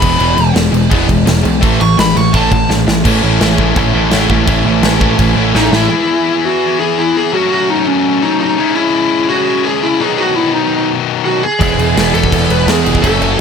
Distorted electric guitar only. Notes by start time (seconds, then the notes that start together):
0.00 E3 G#3 B3
0.17 E3 G#3 B3
0.36 E3 G#3
0.54 E3 G#3
0.72 E3 G#3
0.90 E3 G#3 B3
1.07 E3 G#3
1.25 E3 G#3
1.43 E3 G#3
1.61 A2 E3 A3
1.79 A2 E3
1.97 A2 E3
2.15 A2 E3
2.33 A2 E3 A3
2.51 A2 E3
2.69 A2 E3
2.87 A2 E3
3.04 A2 E3 A3 C#4 E4
3.22 A2 E3 A3 C#4 E4
3.39 A2 E3 A3 C#4 E4
3.57 A2 E3 A3 C#4 E4
3.75 A2 E3 A3 C#4 E4
3.93 A2 E3 A3 C#4 E4
4.11 A2 E3 A3 C#4 E4
4.28 A2 E3 A3 C#4 E4
4.46 A2 E3 A3 C#4 E4
4.64 A2 E3 A3 C#4 E4
4.82 A2 E3 A3 C#4 E4
5.00 A2 E3 A3 C#4 E4
5.17 A2 E3 A3 C#4 E4
5.36 A2 E3 A3 C#4 E4
5.53 A2 E3 A3 C#4 E4
5.71 A2 E3 A3 C#4 E4
5.90 E3 B3 E4 G#4
7.33 F#3 A3 C#4 F#4
8.58 C#3 G#3 C#4 E4
10.00 B2 D#3 F#3 B3 D#4
11.59 E3 G#3 B3 E4
13.02 F#2 C#3 F#3 A3 C#4